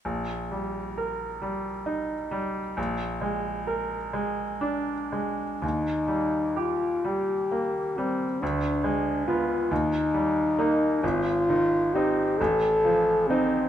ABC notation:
X:1
M:6/8
L:1/8
Q:3/8=44
K:Eb
V:1 name="French horn"
z6 | z6 | E2 F G2 C | D2 F E3 |
F2 G =A2 C |]
V:2 name="Grand piano" clef=bass
B,,, G, B G, E G, | B,,, A, B A, D A, | E,, G, G G, B, G, | D,, A, [=B,F] E,, G, [_B,E] |
A,,, E, [CE] =A,,, F, [CE] |]